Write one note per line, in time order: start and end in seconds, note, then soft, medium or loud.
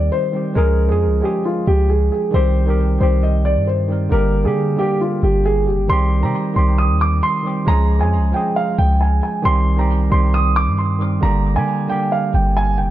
0.00 0.10 D#2 loud
0.00 0.32 D#3 medium
0.00 0.33 G3 medium
0.00 0.35 C4 medium
0.00 0.36 G4 loud
0.12 0.54 C5 medium
0.32 0.48 D#3 medium
0.32 0.49 G3 medium
0.32 0.50 C4 medium
0.36 0.51 G4 medium
0.54 0.91 C#2 loud
0.54 0.78 F3 medium
0.54 0.79 G#3 loud
0.54 0.80 C#4 loud
0.54 0.88 A#4 loud
0.58 0.80 G#4 loud
0.87 1.08 F2 loud
0.87 1.12 F3 medium
0.87 1.12 G#3 medium
0.87 1.13 C#4 medium
0.87 1.21 G#4 medium
0.92 1.14 G#4 medium
1.06 1.22 C#2 loud
1.21 1.83 F3 medium
1.21 1.84 G#3 medium
1.21 1.85 C#4 medium
1.21 1.43 G4 medium
1.25 1.86 G#4 medium
1.45 1.65 F4 medium
1.67 2.10 C#2 loud
1.67 1.88 G4 medium
1.90 2.10 G#4 medium
2.12 2.32 G#4 medium
2.31 2.98 C2 loud
2.31 2.56 D#3 loud
2.31 2.56 G3 medium
2.31 2.57 C4 loud
2.31 2.65 C5 loud
2.36 2.58 G4 loud
2.65 2.89 D#3 medium
2.65 2.90 G3 medium
2.65 2.91 C4 medium
2.65 2.99 A#4 medium
2.70 2.92 G4 medium
2.98 3.58 C2 loud
2.98 3.61 D#3 medium
2.98 3.62 G3 medium
2.98 3.63 C4 medium
2.98 3.21 C5 medium
3.03 3.64 G4 medium
3.23 3.43 D#5 medium
3.45 3.65 D5 medium
3.56 4.09 G2 loud
3.67 4.09 C5 medium
3.88 4.04 D#3 medium
3.88 4.05 G3 medium
3.88 4.06 C4 medium
3.92 4.06 A#4 medium
4.09 4.47 G1 loud
4.09 4.34 D3 loud
4.09 4.34 G3 medium
4.09 4.35 A#3 medium
4.09 4.43 A#4 loud
4.14 4.36 G4 loud
4.43 4.67 D3 medium
4.43 4.77 D3 loud
4.43 4.68 G3 medium
4.43 4.69 A#3 medium
4.43 4.76 G#4 medium
4.47 4.69 G4 medium
4.76 5.39 D3 medium
4.76 5.40 G3 medium
4.76 5.41 A#3 medium
4.76 4.99 G4 medium
4.81 5.41 G4 medium
5.01 5.21 F4 medium
5.23 5.69 G1 loud
5.23 5.43 G4 medium
5.45 5.66 G#4 medium
5.67 5.80 F1 loud
5.67 5.87 G4 medium
5.79 5.89 G1 loud
5.88 6.25 C2 loud
5.88 6.12 D#3 medium
5.88 6.13 G3 medium
5.88 6.13 C4 medium
5.88 6.21 C6 loud
5.92 6.14 G4 loud
6.21 6.34 C3 loud
6.21 6.45 D#3 medium
6.21 6.46 G3 medium
6.21 6.47 C4 medium
6.21 6.54 A#5 medium
6.25 6.47 G4 medium
6.54 6.91 C2 loud
6.54 7.17 D#3 medium
6.54 7.17 G3 medium
6.54 7.18 C4 medium
6.54 6.76 C6 medium
6.58 7.19 G4 medium
6.78 6.99 D#6 medium
6.90 7.21 D#2 loud
7.01 7.21 D6 medium
7.23 7.65 C6 medium
7.43 7.60 D#3 medium
7.43 7.60 G3 medium
7.43 7.61 C4 medium
7.48 7.62 G4 medium
7.65 8.02 C#2 loud
7.65 7.89 F3 loud
7.65 7.90 G#3 loud
7.65 7.91 C#4 loud
7.65 7.99 A#5 loud
7.69 7.92 G#4 loud
7.98 8.19 F2 loud
7.98 8.23 F3 medium
7.98 8.23 G#3 medium
7.98 8.24 C#4 medium
7.98 8.32 G#5 medium
8.03 8.25 G#4 medium
8.17 8.33 C#2 loud
8.32 8.95 F3 medium
8.32 8.95 G#3 medium
8.32 8.96 C#4 medium
8.32 8.54 G5 medium
8.36 8.97 G#4 medium
8.56 8.76 F5 medium
8.78 9.21 C#2 loud
8.78 8.99 G5 medium
9.01 9.21 G#5 medium
9.23 9.43 G#5 medium
9.42 10.09 C2 loud
9.42 9.67 D#3 loud
9.42 9.68 G3 loud
9.42 9.68 C4 loud
9.42 9.77 C6 loud
9.47 9.69 G4 loud
9.76 10.01 D#3 medium
9.76 10.01 G3 medium
9.76 10.02 C4 medium
9.76 10.10 A#5 medium
9.81 10.03 G4 medium
10.10 10.69 C2 loud
10.10 10.72 D#3 medium
10.10 10.73 G3 medium
10.10 10.74 C4 medium
10.10 10.32 C6 medium
10.14 10.75 G4 medium
10.34 10.54 D#6 medium
10.56 10.76 D6 medium
10.67 11.20 G2 loud
10.78 11.20 C6 medium
10.99 11.15 D#3 medium
10.99 11.16 G3 medium
10.99 11.17 C4 medium
11.03 11.17 A#4 medium
11.20 11.58 G1 loud
11.20 11.45 D3 loud
11.20 11.46 G3 medium
11.20 11.46 A#3 medium
11.20 11.54 A#5 loud
11.25 11.47 G4 loud
11.54 11.78 D3 medium
11.54 11.88 D3 loud
11.54 11.79 G3 medium
11.54 11.80 A#3 medium
11.54 11.87 G#5 medium
11.59 11.81 G4 medium
11.87 12.50 D3 medium
11.87 12.51 G3 medium
11.87 12.52 A#3 medium
11.87 12.10 G5 medium
11.92 12.53 G4 medium
12.12 12.32 F5 medium
12.34 12.80 G1 loud
12.34 12.54 G5 medium
12.57 12.77 G#5 medium
12.78 12.91 F1 loud
12.78 12.91 G5 medium